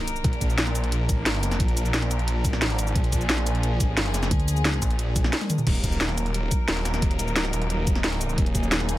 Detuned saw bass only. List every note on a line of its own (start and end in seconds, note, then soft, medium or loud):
0.24 1.21 A#1 loud
1.21 1.59 G#1 loud
1.60 2.54 A#1 medium
2.54 2.81 A1 medium
2.81 2.94 G#1 medium
2.95 3.92 A#1 medium
3.92 4.30 G#1 medium
4.82 5.33 A#1 loud
5.67 6.50 D#1 loud
6.68 7.27 D#1 loud
7.27 7.52 D1 loud
7.53 8.37 D#1 loud
8.38 8.98 D#1 loud